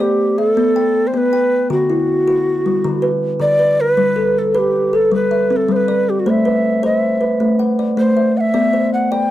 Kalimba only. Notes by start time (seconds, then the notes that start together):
Already playing: C5
0.00 D5
0.38 E5
0.57 B3
0.76 G5
1.14 B3
1.33 G5
1.70 D3 F#4
1.90 E4
2.28 F#4
2.66 G3
2.84 D3
3.02 B4
3.40 D3
3.59 B4
3.97 G3 B4
4.16 A4
4.55 B4
4.93 A4
5.12 G3
5.31 E5
5.50 C4
5.68 G3
5.88 D5
6.26 A3 C5
6.45 B4
6.83 C5
7.21 B4
7.40 A3
7.59 F#5
7.79 D5
7.97 A3
8.17 E5
8.54 B3 D5
8.73 C5
9.12 D5